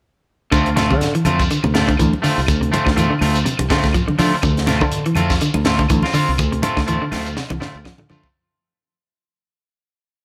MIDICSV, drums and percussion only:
0, 0, Header, 1, 3, 480
1, 0, Start_track
1, 0, Key_signature, -1, "minor"
1, 0, Tempo, 488998
1, 517, Time_signature, 4, 2, 24, 8
1, 10055, End_track
2, 0, Start_track
2, 0, Title_t, "Shekere"
2, 519, Note_on_c, 9, 82, 69
2, 617, Note_off_c, 9, 82, 0
2, 757, Note_on_c, 9, 82, 82
2, 855, Note_off_c, 9, 82, 0
2, 888, Note_on_c, 9, 82, 28
2, 986, Note_off_c, 9, 82, 0
2, 997, Note_on_c, 9, 82, 78
2, 1095, Note_off_c, 9, 82, 0
2, 1234, Note_on_c, 9, 82, 27
2, 1332, Note_off_c, 9, 82, 0
2, 1369, Note_on_c, 9, 82, 63
2, 1467, Note_off_c, 9, 82, 0
2, 1485, Note_on_c, 9, 82, 62
2, 1583, Note_off_c, 9, 82, 0
2, 1723, Note_on_c, 9, 82, 80
2, 1822, Note_off_c, 9, 82, 0
2, 1867, Note_on_c, 9, 82, 27
2, 1961, Note_off_c, 9, 82, 0
2, 1961, Note_on_c, 9, 82, 82
2, 2059, Note_off_c, 9, 82, 0
2, 2203, Note_on_c, 9, 82, 72
2, 2301, Note_off_c, 9, 82, 0
2, 2338, Note_on_c, 9, 82, 28
2, 2436, Note_off_c, 9, 82, 0
2, 2443, Note_on_c, 9, 82, 68
2, 2542, Note_off_c, 9, 82, 0
2, 2679, Note_on_c, 9, 82, 81
2, 2778, Note_off_c, 9, 82, 0
2, 2820, Note_on_c, 9, 82, 28
2, 2918, Note_off_c, 9, 82, 0
2, 2922, Note_on_c, 9, 82, 86
2, 3020, Note_off_c, 9, 82, 0
2, 3165, Note_on_c, 9, 82, 29
2, 3263, Note_off_c, 9, 82, 0
2, 3288, Note_on_c, 9, 82, 69
2, 3386, Note_off_c, 9, 82, 0
2, 3394, Note_on_c, 9, 82, 64
2, 3492, Note_off_c, 9, 82, 0
2, 3627, Note_on_c, 9, 82, 81
2, 3725, Note_off_c, 9, 82, 0
2, 3770, Note_on_c, 9, 82, 27
2, 3868, Note_off_c, 9, 82, 0
2, 3874, Note_on_c, 9, 82, 85
2, 3972, Note_off_c, 9, 82, 0
2, 4114, Note_on_c, 9, 82, 68
2, 4212, Note_off_c, 9, 82, 0
2, 4255, Note_on_c, 9, 82, 27
2, 4353, Note_off_c, 9, 82, 0
2, 4355, Note_on_c, 9, 82, 74
2, 4453, Note_off_c, 9, 82, 0
2, 4585, Note_on_c, 9, 82, 76
2, 4684, Note_off_c, 9, 82, 0
2, 4722, Note_on_c, 9, 82, 29
2, 4821, Note_off_c, 9, 82, 0
2, 4830, Note_on_c, 9, 82, 83
2, 4928, Note_off_c, 9, 82, 0
2, 5078, Note_on_c, 9, 82, 26
2, 5177, Note_off_c, 9, 82, 0
2, 5206, Note_on_c, 9, 82, 66
2, 5304, Note_off_c, 9, 82, 0
2, 5305, Note_on_c, 9, 82, 63
2, 5404, Note_off_c, 9, 82, 0
2, 5543, Note_on_c, 9, 82, 89
2, 5641, Note_off_c, 9, 82, 0
2, 5685, Note_on_c, 9, 82, 29
2, 5783, Note_off_c, 9, 82, 0
2, 5785, Note_on_c, 9, 82, 84
2, 5883, Note_off_c, 9, 82, 0
2, 6019, Note_on_c, 9, 82, 67
2, 6118, Note_off_c, 9, 82, 0
2, 6153, Note_on_c, 9, 82, 29
2, 6251, Note_off_c, 9, 82, 0
2, 6261, Note_on_c, 9, 82, 72
2, 6359, Note_off_c, 9, 82, 0
2, 6504, Note_on_c, 9, 82, 82
2, 6603, Note_off_c, 9, 82, 0
2, 6643, Note_on_c, 9, 82, 28
2, 6741, Note_off_c, 9, 82, 0
2, 6750, Note_on_c, 9, 82, 84
2, 6849, Note_off_c, 9, 82, 0
2, 6994, Note_on_c, 9, 82, 27
2, 7092, Note_off_c, 9, 82, 0
2, 7124, Note_on_c, 9, 82, 65
2, 7222, Note_off_c, 9, 82, 0
2, 7235, Note_on_c, 9, 82, 60
2, 7334, Note_off_c, 9, 82, 0
2, 7473, Note_on_c, 9, 82, 83
2, 7571, Note_off_c, 9, 82, 0
2, 7605, Note_on_c, 9, 82, 28
2, 7704, Note_off_c, 9, 82, 0
2, 7717, Note_on_c, 9, 82, 88
2, 7815, Note_off_c, 9, 82, 0
2, 7959, Note_on_c, 9, 82, 64
2, 8057, Note_off_c, 9, 82, 0
2, 8087, Note_on_c, 9, 82, 29
2, 8185, Note_off_c, 9, 82, 0
2, 10055, End_track
3, 0, Start_track
3, 0, Title_t, "Drums"
3, 511, Note_on_c, 9, 42, 61
3, 512, Note_on_c, 9, 75, 65
3, 514, Note_on_c, 9, 36, 88
3, 609, Note_off_c, 9, 42, 0
3, 611, Note_off_c, 9, 75, 0
3, 612, Note_off_c, 9, 36, 0
3, 648, Note_on_c, 9, 42, 33
3, 746, Note_off_c, 9, 42, 0
3, 754, Note_on_c, 9, 42, 53
3, 754, Note_on_c, 9, 63, 89
3, 762, Note_on_c, 9, 38, 27
3, 852, Note_off_c, 9, 42, 0
3, 852, Note_off_c, 9, 63, 0
3, 860, Note_off_c, 9, 38, 0
3, 880, Note_on_c, 9, 75, 66
3, 889, Note_on_c, 9, 36, 62
3, 897, Note_on_c, 9, 63, 70
3, 978, Note_off_c, 9, 75, 0
3, 987, Note_off_c, 9, 36, 0
3, 992, Note_on_c, 9, 42, 70
3, 995, Note_off_c, 9, 63, 0
3, 1000, Note_on_c, 9, 38, 27
3, 1090, Note_off_c, 9, 42, 0
3, 1098, Note_off_c, 9, 38, 0
3, 1127, Note_on_c, 9, 42, 35
3, 1225, Note_off_c, 9, 42, 0
3, 1227, Note_on_c, 9, 63, 76
3, 1227, Note_on_c, 9, 64, 80
3, 1227, Note_on_c, 9, 75, 59
3, 1231, Note_on_c, 9, 42, 53
3, 1325, Note_off_c, 9, 63, 0
3, 1325, Note_off_c, 9, 64, 0
3, 1325, Note_off_c, 9, 75, 0
3, 1329, Note_off_c, 9, 42, 0
3, 1370, Note_on_c, 9, 36, 68
3, 1371, Note_on_c, 9, 42, 33
3, 1468, Note_off_c, 9, 36, 0
3, 1469, Note_off_c, 9, 42, 0
3, 1478, Note_on_c, 9, 42, 65
3, 1576, Note_off_c, 9, 42, 0
3, 1600, Note_on_c, 9, 75, 57
3, 1608, Note_on_c, 9, 63, 86
3, 1698, Note_off_c, 9, 75, 0
3, 1706, Note_off_c, 9, 63, 0
3, 1715, Note_on_c, 9, 42, 53
3, 1722, Note_on_c, 9, 38, 65
3, 1813, Note_off_c, 9, 42, 0
3, 1821, Note_off_c, 9, 38, 0
3, 1851, Note_on_c, 9, 36, 70
3, 1853, Note_on_c, 9, 42, 34
3, 1936, Note_on_c, 9, 75, 61
3, 1950, Note_off_c, 9, 36, 0
3, 1951, Note_off_c, 9, 42, 0
3, 1958, Note_on_c, 9, 36, 58
3, 1960, Note_on_c, 9, 42, 69
3, 2035, Note_off_c, 9, 75, 0
3, 2056, Note_off_c, 9, 36, 0
3, 2058, Note_off_c, 9, 42, 0
3, 2095, Note_on_c, 9, 63, 72
3, 2193, Note_off_c, 9, 63, 0
3, 2196, Note_on_c, 9, 46, 54
3, 2203, Note_on_c, 9, 64, 76
3, 2294, Note_off_c, 9, 46, 0
3, 2301, Note_off_c, 9, 64, 0
3, 2421, Note_on_c, 9, 75, 65
3, 2438, Note_on_c, 9, 36, 85
3, 2438, Note_on_c, 9, 64, 71
3, 2439, Note_on_c, 9, 42, 67
3, 2519, Note_off_c, 9, 75, 0
3, 2536, Note_off_c, 9, 36, 0
3, 2536, Note_off_c, 9, 64, 0
3, 2537, Note_off_c, 9, 42, 0
3, 2578, Note_on_c, 9, 42, 32
3, 2676, Note_off_c, 9, 42, 0
3, 2685, Note_on_c, 9, 63, 93
3, 2685, Note_on_c, 9, 64, 69
3, 2687, Note_on_c, 9, 42, 49
3, 2783, Note_off_c, 9, 63, 0
3, 2783, Note_off_c, 9, 64, 0
3, 2785, Note_off_c, 9, 42, 0
3, 2797, Note_on_c, 9, 75, 65
3, 2813, Note_on_c, 9, 36, 62
3, 2823, Note_on_c, 9, 38, 25
3, 2895, Note_off_c, 9, 75, 0
3, 2911, Note_off_c, 9, 36, 0
3, 2920, Note_on_c, 9, 42, 66
3, 2921, Note_off_c, 9, 38, 0
3, 3018, Note_off_c, 9, 42, 0
3, 3133, Note_on_c, 9, 75, 61
3, 3158, Note_on_c, 9, 63, 82
3, 3158, Note_on_c, 9, 64, 78
3, 3161, Note_on_c, 9, 46, 62
3, 3231, Note_off_c, 9, 75, 0
3, 3256, Note_off_c, 9, 63, 0
3, 3256, Note_off_c, 9, 64, 0
3, 3259, Note_off_c, 9, 46, 0
3, 3295, Note_on_c, 9, 42, 33
3, 3393, Note_off_c, 9, 42, 0
3, 3393, Note_on_c, 9, 63, 72
3, 3396, Note_on_c, 9, 42, 62
3, 3491, Note_off_c, 9, 63, 0
3, 3494, Note_off_c, 9, 42, 0
3, 3507, Note_on_c, 9, 75, 57
3, 3525, Note_on_c, 9, 63, 87
3, 3533, Note_on_c, 9, 42, 29
3, 3606, Note_off_c, 9, 75, 0
3, 3623, Note_off_c, 9, 63, 0
3, 3631, Note_off_c, 9, 42, 0
3, 3634, Note_on_c, 9, 36, 65
3, 3638, Note_on_c, 9, 42, 46
3, 3646, Note_on_c, 9, 38, 69
3, 3732, Note_off_c, 9, 36, 0
3, 3736, Note_off_c, 9, 42, 0
3, 3744, Note_off_c, 9, 38, 0
3, 3766, Note_on_c, 9, 36, 70
3, 3766, Note_on_c, 9, 42, 31
3, 3773, Note_on_c, 9, 38, 27
3, 3853, Note_on_c, 9, 75, 58
3, 3864, Note_off_c, 9, 42, 0
3, 3865, Note_off_c, 9, 36, 0
3, 3872, Note_off_c, 9, 38, 0
3, 3872, Note_on_c, 9, 36, 65
3, 3872, Note_on_c, 9, 42, 63
3, 3951, Note_off_c, 9, 75, 0
3, 3970, Note_off_c, 9, 36, 0
3, 3971, Note_off_c, 9, 42, 0
3, 4009, Note_on_c, 9, 63, 77
3, 4107, Note_off_c, 9, 63, 0
3, 4108, Note_on_c, 9, 46, 58
3, 4116, Note_on_c, 9, 63, 68
3, 4116, Note_on_c, 9, 64, 77
3, 4207, Note_off_c, 9, 46, 0
3, 4214, Note_off_c, 9, 63, 0
3, 4214, Note_off_c, 9, 64, 0
3, 4338, Note_on_c, 9, 75, 63
3, 4345, Note_on_c, 9, 42, 66
3, 4350, Note_on_c, 9, 36, 86
3, 4352, Note_on_c, 9, 64, 68
3, 4437, Note_off_c, 9, 75, 0
3, 4443, Note_off_c, 9, 42, 0
3, 4448, Note_off_c, 9, 36, 0
3, 4450, Note_off_c, 9, 64, 0
3, 4488, Note_on_c, 9, 42, 33
3, 4496, Note_on_c, 9, 38, 26
3, 4584, Note_on_c, 9, 63, 89
3, 4587, Note_off_c, 9, 42, 0
3, 4594, Note_off_c, 9, 38, 0
3, 4599, Note_on_c, 9, 42, 52
3, 4607, Note_on_c, 9, 38, 26
3, 4683, Note_off_c, 9, 63, 0
3, 4697, Note_off_c, 9, 42, 0
3, 4705, Note_off_c, 9, 38, 0
3, 4705, Note_on_c, 9, 75, 66
3, 4718, Note_on_c, 9, 63, 72
3, 4725, Note_on_c, 9, 36, 57
3, 4803, Note_off_c, 9, 75, 0
3, 4816, Note_off_c, 9, 63, 0
3, 4823, Note_off_c, 9, 36, 0
3, 4825, Note_on_c, 9, 42, 67
3, 4923, Note_off_c, 9, 42, 0
3, 4963, Note_on_c, 9, 42, 33
3, 5052, Note_on_c, 9, 75, 63
3, 5058, Note_on_c, 9, 63, 77
3, 5058, Note_on_c, 9, 64, 77
3, 5061, Note_off_c, 9, 42, 0
3, 5070, Note_on_c, 9, 42, 51
3, 5150, Note_off_c, 9, 75, 0
3, 5156, Note_off_c, 9, 63, 0
3, 5156, Note_off_c, 9, 64, 0
3, 5168, Note_off_c, 9, 42, 0
3, 5202, Note_on_c, 9, 42, 34
3, 5204, Note_on_c, 9, 36, 62
3, 5210, Note_on_c, 9, 38, 30
3, 5300, Note_off_c, 9, 42, 0
3, 5302, Note_off_c, 9, 36, 0
3, 5308, Note_off_c, 9, 38, 0
3, 5308, Note_on_c, 9, 42, 66
3, 5406, Note_off_c, 9, 42, 0
3, 5439, Note_on_c, 9, 63, 80
3, 5440, Note_on_c, 9, 75, 62
3, 5537, Note_off_c, 9, 63, 0
3, 5538, Note_off_c, 9, 75, 0
3, 5545, Note_on_c, 9, 42, 52
3, 5553, Note_on_c, 9, 38, 67
3, 5644, Note_off_c, 9, 42, 0
3, 5651, Note_off_c, 9, 38, 0
3, 5678, Note_on_c, 9, 42, 34
3, 5684, Note_on_c, 9, 36, 68
3, 5776, Note_off_c, 9, 42, 0
3, 5777, Note_on_c, 9, 75, 65
3, 5782, Note_off_c, 9, 36, 0
3, 5789, Note_on_c, 9, 42, 67
3, 5791, Note_on_c, 9, 36, 65
3, 5876, Note_off_c, 9, 75, 0
3, 5887, Note_off_c, 9, 42, 0
3, 5890, Note_off_c, 9, 36, 0
3, 5914, Note_on_c, 9, 63, 72
3, 5936, Note_on_c, 9, 38, 26
3, 6012, Note_off_c, 9, 63, 0
3, 6023, Note_on_c, 9, 64, 77
3, 6030, Note_on_c, 9, 46, 53
3, 6034, Note_off_c, 9, 38, 0
3, 6121, Note_off_c, 9, 64, 0
3, 6128, Note_off_c, 9, 46, 0
3, 6265, Note_on_c, 9, 75, 63
3, 6271, Note_on_c, 9, 64, 71
3, 6272, Note_on_c, 9, 42, 72
3, 6273, Note_on_c, 9, 36, 84
3, 6363, Note_off_c, 9, 75, 0
3, 6369, Note_off_c, 9, 64, 0
3, 6370, Note_off_c, 9, 42, 0
3, 6371, Note_off_c, 9, 36, 0
3, 6405, Note_on_c, 9, 42, 34
3, 6503, Note_off_c, 9, 42, 0
3, 6508, Note_on_c, 9, 63, 89
3, 6512, Note_on_c, 9, 42, 55
3, 6606, Note_off_c, 9, 63, 0
3, 6610, Note_off_c, 9, 42, 0
3, 6646, Note_on_c, 9, 36, 56
3, 6647, Note_on_c, 9, 75, 64
3, 6651, Note_on_c, 9, 38, 26
3, 6744, Note_off_c, 9, 36, 0
3, 6745, Note_off_c, 9, 75, 0
3, 6749, Note_off_c, 9, 38, 0
3, 6750, Note_on_c, 9, 42, 66
3, 6848, Note_off_c, 9, 42, 0
3, 6986, Note_on_c, 9, 75, 59
3, 6988, Note_on_c, 9, 63, 81
3, 6988, Note_on_c, 9, 64, 77
3, 6994, Note_on_c, 9, 46, 64
3, 7002, Note_on_c, 9, 38, 28
3, 7084, Note_off_c, 9, 75, 0
3, 7087, Note_off_c, 9, 63, 0
3, 7087, Note_off_c, 9, 64, 0
3, 7092, Note_off_c, 9, 46, 0
3, 7100, Note_off_c, 9, 38, 0
3, 7129, Note_on_c, 9, 42, 31
3, 7228, Note_off_c, 9, 42, 0
3, 7232, Note_on_c, 9, 38, 47
3, 7234, Note_on_c, 9, 63, 69
3, 7330, Note_off_c, 9, 38, 0
3, 7332, Note_off_c, 9, 63, 0
3, 7356, Note_on_c, 9, 75, 63
3, 7365, Note_on_c, 9, 63, 81
3, 7455, Note_off_c, 9, 75, 0
3, 7463, Note_off_c, 9, 63, 0
3, 7479, Note_on_c, 9, 38, 56
3, 7577, Note_off_c, 9, 38, 0
3, 7703, Note_on_c, 9, 75, 60
3, 7709, Note_on_c, 9, 36, 63
3, 7717, Note_on_c, 9, 38, 66
3, 7801, Note_off_c, 9, 75, 0
3, 7807, Note_off_c, 9, 36, 0
3, 7815, Note_off_c, 9, 38, 0
3, 7836, Note_on_c, 9, 45, 58
3, 7837, Note_on_c, 9, 63, 77
3, 7934, Note_off_c, 9, 45, 0
3, 7935, Note_off_c, 9, 63, 0
3, 7947, Note_on_c, 9, 43, 68
3, 7956, Note_on_c, 9, 63, 62
3, 7956, Note_on_c, 9, 64, 74
3, 8045, Note_off_c, 9, 43, 0
3, 8054, Note_off_c, 9, 63, 0
3, 8054, Note_off_c, 9, 64, 0
3, 8083, Note_on_c, 9, 36, 66
3, 8181, Note_off_c, 9, 36, 0
3, 10055, End_track
0, 0, End_of_file